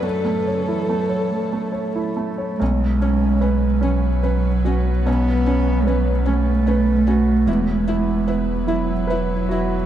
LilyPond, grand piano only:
\new Staff \with { instrumentName = "Grand piano" } { \time 6/8 \key b \dorian \tempo 4. = 49 fis,16 a16 cis''16 e'16 a16 cis''8 a16 cis''16 e'16 a16 cis''16 | b,,8 cis'8 b'8 cis'8 b'8 fis'8 | b,,8 cis'8 b'8 cis'8 b'8 fis'8 | e,8 e'8 b'8 e'8 b'8 fis'8 | }